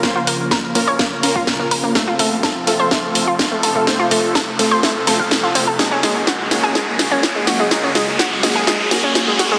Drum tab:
HH |--o---o---o---o-|--o---o---o---o-|--o---o---o---o-|--o---o---o---o-|
SD |o---o---o---o---|o---o---o---o---|o---o---o---o---|o-o-o-o-o-o-o-o-|
BD |o---o---o--oo---|o---o---o---o---|o---o---o--oo---|o---o---o---o---|

HH |--o---o---o---o-|
SD |o-o-o-o-o-o-o-o-|
BD |o---o---o--oo---|